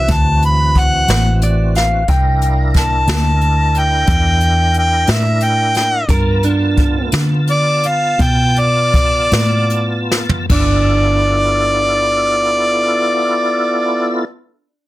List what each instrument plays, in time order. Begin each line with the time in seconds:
Already playing: tonewheel organ E3 C4 F#4, harmonica E5
0.08 fingered electric bass D2, harmonica A5, kick, closed hi-hat
0.42 harmonica B5, closed hi-hat
0.75 harmonica F#5, kick, closed hi-hat
1.08 fingered electric bass A1, snare, closed hi-hat
1.42 clean electric guitar D5, closed hi-hat
1.75 clean electric guitar F5, snare, closed hi-hat
2.08 fingered electric bass C2, tonewheel organ D4 E4 A#4, clean electric guitar G5, kick, closed hi-hat
2.42 closed hi-hat
2.74 harmonica A5, kick, snare, closed hi-hat
3.07 fingered electric bass D2, snare, closed hi-hat
3.41 closed hi-hat
3.75 closed hi-hat
3.79 harmonica G5
4.07 fingered electric bass E2, kick, closed hi-hat
4.41 closed hi-hat
4.74 closed hi-hat
4.79 harmonica G5
5.07 fingered electric bass A2, harmonica E5, snare, closed hi-hat
5.41 harmonica G5, closed hi-hat
5.75 harmonica G5, snare, closed hi-hat
6.08 fingered electric bass G2, tonewheel organ B3 F4 A5, clean electric guitar A#4, kick, closed hi-hat
6.43 clean electric guitar D4, closed hi-hat
6.77 kick, closed hi-hat
7.12 fingered electric bass D3, snare, closed hi-hat
7.47 harmonica D5, closed hi-hat
7.83 closed hi-hat
7.88 harmonica F5
8.19 fingered electric bass B2, harmonica G5, kick, closed hi-hat
8.56 harmonica D5, closed hi-hat
8.94 kick, closed hi-hat
9.32 fingered electric bass A2, snare, closed hi-hat
9.70 closed hi-hat
10.11 snare
10.29 floor tom
10.49 fingered electric bass G1, tonewheel organ B3 E4 F4 A4, clean electric guitar D4, harmonica D5, kick, crash